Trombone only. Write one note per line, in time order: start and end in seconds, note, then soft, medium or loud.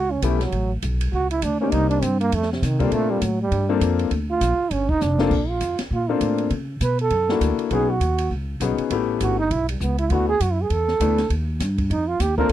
0.00 0.13 F#4 loud
0.11 0.26 C#4 medium
0.24 0.43 A3 medium
0.42 0.71 F#3 medium
1.14 1.30 F#4 loud
1.31 1.45 E4 medium
1.44 1.60 D4 medium
1.61 1.74 C#4 loud
1.73 1.89 D#4 loud
1.90 2.04 D4 loud
2.02 2.20 C4 medium
2.21 2.36 A#3 loud
2.34 2.51 A3 medium
2.52 2.65 C3 medium
2.64 2.82 D#3 medium
2.80 2.95 G3 medium
2.93 3.12 A3 loud
3.10 3.25 G3 medium
3.24 3.41 F#3 medium
3.41 3.69 G3 loud
4.30 4.74 F4 loud
4.73 4.91 C#4 medium
4.89 5.04 D#4 loud
5.02 5.50 D4 medium
5.49 5.79 F4 medium
5.93 6.11 F4 medium
6.10 6.52 D4 medium
6.83 6.99 B4 loud
7.01 7.39 A4 loud
7.73 7.91 G#4 loud
7.90 8.31 F#4 loud
9.22 9.38 F#4 medium
9.39 9.53 D#4 loud
9.52 9.68 E4 medium
9.69 9.82 G3 medium
9.81 9.98 B3 medium
9.99 10.13 E4 medium
10.12 10.28 F#4 medium
10.29 10.43 G#4 loud
10.42 10.54 F#4 medium
10.52 10.63 E4 medium
10.62 10.73 G#4 medium
10.72 11.31 A4 loud
11.91 12.09 D#4 medium
12.08 12.23 F4 loud
12.21 12.37 G4 medium
12.38 12.52 A#4 loud